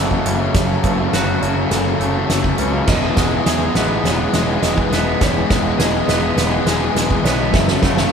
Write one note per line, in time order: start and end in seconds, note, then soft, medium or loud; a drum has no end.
0.00 0.18 F#1 medium
0.00 1.70 E3 medium
0.00 2.84 F#3 medium
0.00 0.82 A3 medium
0.00 0.24 C#4 medium
0.00 2.84 E4 medium
0.00 0.26 F#4 medium
0.00 2.84 A4 medium
0.00 0.55 D#5 medium
0.07 0.13 F#2 soft
0.07 0.13 C#3 medium
0.11 0.21 F#2 soft
0.11 0.21 C#3 medium
0.11 kick medium
0.22 0.48 F#1 medium
0.22 0.29 F#2 soft
0.22 0.30 C#3 medium
0.22 1.41 C#4 medium
0.22 closed hi-hat medium
0.30 0.37 F#2 soft
0.30 0.38 C#3 medium
0.37 0.44 F#2 medium
0.37 0.46 C#3 medium
0.45 0.52 F#2 soft
0.45 0.54 C#3 soft
0.54 0.77 F#1 medium
0.54 0.62 F#2 medium
0.54 2.01 F#2 medium
0.54 0.62 C#3 medium
0.54 0.84 C#5 medium
0.54 kick loud
0.54 snare medium
0.54 closed hi-hat medium
0.62 0.70 F#2 soft
0.62 0.70 C#3 medium
0.70 0.77 F#2 medium
0.70 0.78 C#3 medium
0.77 0.85 F#2 soft
0.77 0.85 C#3 soft
0.83 1.06 F#1 medium
0.83 0.93 F#2 medium
0.83 0.93 C#3 medium
0.83 1.98 A3 medium
0.83 1.14 B4 medium
0.83 kick medium
0.83 closed hi-hat medium
0.93 1.01 F#2 soft
0.93 1.01 C#3 medium
1.01 1.08 F#2 medium
1.01 1.08 C#3 medium
1.08 1.16 F#2 medium
1.08 1.15 C#3 soft
1.13 1.35 F#1 medium
1.13 1.23 C#3 medium
1.13 2.59 F#4 medium
1.13 1.41 C#5 medium
1.13 snare medium
1.13 closed hi-hat medium
1.17 1.24 F#2 medium
1.24 1.32 F#2 soft
1.24 1.32 C#3 medium
1.32 1.40 F#2 medium
1.32 1.41 C#3 medium
1.40 1.64 F#1 medium
1.40 1.47 F#2 medium
1.40 1.48 C#3 soft
1.40 2.58 C#4 medium
1.40 1.72 C#5 medium
1.40 closed hi-hat medium
1.48 1.55 F#2 medium
1.48 1.56 C#3 medium
1.57 1.64 F#2 soft
1.57 1.64 C#3 medium
1.64 1.71 F#2 medium
1.64 1.70 C#3 medium
1.70 1.93 F#1 medium
1.70 1.79 F#2 medium
1.70 1.78 C#3 medium
1.70 2.29 E3 medium
1.70 2.30 A4 medium
1.70 snare medium
1.70 closed hi-hat medium
1.79 1.87 F#2 medium
1.79 1.87 C#3 medium
1.87 1.95 F#2 soft
1.87 1.94 C#3 medium
1.94 2.01 F#2 medium
1.94 2.01 C#3 medium
1.99 2.23 F#1 medium
1.99 2.10 F#2 soft
1.99 2.09 C#3 medium
1.99 2.88 A3 medium
1.99 closed hi-hat medium
2.09 2.17 F#2 medium
2.09 2.17 C#3 medium
2.18 2.26 F#2 soft
2.18 2.26 C#3 soft
2.26 2.52 F#1 medium
2.26 2.34 F#2 medium
2.26 2.34 C#3 medium
2.26 5.79 E3 medium
2.26 snare medium
2.26 closed hi-hat medium
2.34 2.41 F#2 soft
2.34 2.42 C#3 soft
2.41 2.48 F#2 medium
2.41 2.48 C#3 medium
2.41 kick medium
2.48 2.56 F#2 soft
2.48 2.56 C#3 medium
2.57 2.81 C#2 medium
2.57 2.65 F#2 medium
2.57 2.64 C#3 medium
2.57 2.88 C#4 medium
2.57 2.88 B4 medium
2.57 closed hi-hat medium
2.65 2.72 F#2 soft
2.65 2.72 C#3 medium
2.73 2.80 F#2 medium
2.73 2.80 C#3 medium
2.80 2.88 F#2 soft
2.80 2.87 C#3 soft
2.87 3.10 E1 medium
2.87 4.34 E2 medium
2.87 2.94 E3 medium
2.87 7.50 E3 medium
2.87 2.95 G#3 medium
2.87 7.50 D#4 medium
2.87 7.50 G#4 medium
2.87 3.18 D#5 medium
2.87 kick loud
2.87 snare medium
2.87 crash medium
2.94 3.02 E3 soft
2.94 3.03 G#3 soft
3.03 3.10 E3 medium
3.03 3.10 G#3 medium
3.10 3.17 E3 soft
3.10 3.17 G#3 medium
3.17 3.39 E1 medium
3.17 3.25 E3 medium
3.17 4.33 G#3 medium
3.17 3.26 G#3 medium
3.17 3.46 F#5 medium
3.17 kick medium
3.17 snare medium
3.17 closed hi-hat medium
3.25 3.33 E3 soft
3.25 3.34 G#3 medium
3.33 3.41 E3 medium
3.33 3.41 G#3 medium
3.41 3.49 E3 soft
3.41 3.49 G#3 medium
3.46 3.68 E2 medium
3.46 3.57 E3 medium
3.46 3.56 G#3 medium
3.46 4.92 G#4 medium
3.46 3.76 E5 medium
3.46 snare medium
3.46 closed hi-hat medium
3.57 3.65 E3 medium
3.57 3.64 G#3 medium
3.65 3.71 E3 medium
3.65 3.72 G#3 medium
3.72 3.97 A1 medium
3.72 3.79 E3 soft
3.72 3.80 G#3 medium
3.72 snare medium
3.72 closed hi-hat medium
3.76 3.87 E3 medium
3.76 4.91 B3 medium
3.76 4.05 D#5 medium
3.81 3.88 G#3 medium
3.88 3.96 E3 soft
3.88 3.96 G#3 medium
3.97 4.03 E3 medium
3.97 4.04 G#3 medium
4.03 4.26 E1 medium
4.03 4.11 E3 medium
4.03 4.11 G#3 medium
4.03 4.63 C#5 medium
4.03 snare medium
4.03 closed hi-hat medium
4.11 4.18 E3 medium
4.11 4.19 G#3 medium
4.19 4.26 E3 medium
4.19 4.27 G#3 medium
4.27 4.34 E3 medium
4.27 4.34 G#3 medium
4.33 4.56 E1 medium
4.33 4.42 E3 medium
4.33 5.50 G#3 medium
4.33 4.42 G#3 soft
4.33 snare medium
4.33 closed hi-hat medium
4.42 4.50 E3 medium
4.42 4.51 G#3 medium
4.50 4.57 E3 soft
4.50 4.58 G#3 soft
4.58 4.65 E3 medium
4.58 4.66 G#3 medium
4.62 4.85 E1 medium
4.62 4.72 E3 soft
4.62 4.73 G#3 medium
4.62 5.21 D#5 medium
4.62 snare medium
4.62 closed hi-hat medium
4.73 4.80 E3 medium
4.73 4.81 G#3 medium
4.78 4.88 E3 medium
4.78 4.89 G#3 soft
4.78 kick medium
4.89 5.14 E1 medium
4.89 4.96 E3 medium
4.89 4.97 G#3 medium
4.89 6.07 B3 medium
4.89 snare medium
4.89 closed hi-hat medium
4.97 5.04 E3 soft
4.97 5.05 G#3 soft
5.05 5.12 E3 medium
5.05 5.13 G#3 medium
5.12 5.20 E3 soft
5.12 5.21 G#3 soft
5.21 5.43 E1 medium
5.21 6.67 E2 medium
5.21 5.29 E3 medium
5.21 5.29 G#3 medium
5.21 5.50 C#5 medium
5.21 kick loud
5.21 snare medium
5.21 closed hi-hat medium
5.29 5.36 E3 soft
5.29 5.36 G#3 soft
5.36 5.44 E3 soft
5.36 5.44 G#3 medium
5.45 5.52 E3 soft
5.45 5.52 G#3 soft
5.50 5.73 E1 medium
5.50 5.59 E3 medium
5.50 6.65 G#3 medium
5.50 5.60 G#3 medium
5.50 5.79 B4 medium
5.50 kick medium
5.50 snare medium
5.50 closed hi-hat medium
5.60 5.67 E3 soft
5.60 5.68 G#3 medium
5.67 5.75 E3 medium
5.67 5.75 G#3 medium
5.76 6.01 E1 medium
5.76 5.81 E3 soft
5.76 5.83 G#3 medium
5.76 7.25 G#4 medium
5.76 6.07 D#5 medium
5.76 snare medium
5.76 closed hi-hat medium
5.82 5.90 E3 medium
5.82 5.91 G#3 medium
5.90 5.98 E3 soft
5.90 5.99 G#3 soft
5.99 6.06 E3 medium
5.99 6.07 G#3 medium
6.07 6.30 E1 medium
6.07 6.14 E3 soft
6.07 6.15 G#3 medium
6.07 7.24 B3 medium
6.07 6.38 D#5 medium
6.07 snare medium
6.07 closed hi-hat medium
6.15 6.22 E3 medium
6.15 6.22 G#3 medium
6.22 6.29 E3 medium
6.22 6.30 G#3 soft
6.29 6.36 E3 medium
6.29 6.38 G#3 medium
6.36 6.59 E1 medium
6.36 6.44 E3 medium
6.36 6.45 G#3 medium
6.36 6.95 B4 medium
6.36 snare medium
6.36 closed hi-hat medium
6.45 6.53 E3 medium
6.45 6.52 G#3 medium
6.53 6.60 E3 soft
6.53 6.60 G#3 medium
6.61 6.68 E3 medium
6.61 6.68 G#3 medium
6.65 6.88 E1 medium
6.65 6.76 E3 soft
6.65 7.54 G#3 medium
6.65 snare medium
6.65 closed hi-hat medium
6.69 6.76 G#3 soft
6.77 6.84 E3 medium
6.77 6.84 G#3 medium
6.84 6.92 E3 soft
6.84 6.92 G#3 medium
6.92 7.17 E1 medium
6.92 7.00 E3 medium
6.92 6.99 G#3 medium
6.96 7.07 E3 soft
6.96 7.07 G#3 soft
6.96 snare medium
6.96 closed hi-hat medium
7.08 7.14 E3 medium
7.08 7.15 G#3 medium
7.08 kick medium
7.15 7.22 E3 soft
7.15 7.23 G#3 soft
7.23 7.54 B1 medium
7.23 7.30 E3 soft
7.23 7.31 G#3 medium
7.23 7.54 B3 medium
7.23 7.54 C#5 medium
7.23 snare medium
7.23 closed hi-hat medium
7.30 7.38 E3 soft
7.30 7.39 G#3 soft
7.38 7.45 E3 soft
7.38 7.46 G#3 medium
7.46 7.53 E3 soft
7.46 7.54 G#3 soft
7.52 7.76 F#1 medium
7.52 7.61 F#2 medium
7.52 8.12 F#2 medium
7.52 7.60 C#3 medium
7.52 8.12 F#3 medium
7.52 8.12 E4 medium
7.52 8.12 A4 medium
7.52 7.82 E5 medium
7.52 kick loud
7.52 snare loud
7.60 7.69 F#2 soft
7.60 7.68 C#3 medium
7.68 7.76 F#2 medium
7.68 7.76 C#3 medium
7.68 snare medium
7.76 7.83 F#2 medium
7.76 7.84 C#3 medium
7.82 8.05 F#1 medium
7.82 7.91 F#2 medium
7.82 7.92 C#3 medium
7.82 8.12 A3 medium
7.82 8.11 F#5 medium
7.82 kick medium
7.82 snare medium
7.91 7.99 F#2 medium
7.91 8.00 C#3 medium
7.97 8.07 F#2 medium
7.97 8.08 C#3 medium
7.97 snare medium
8.08 8.12 F#2 medium
8.08 8.12 C#3 medium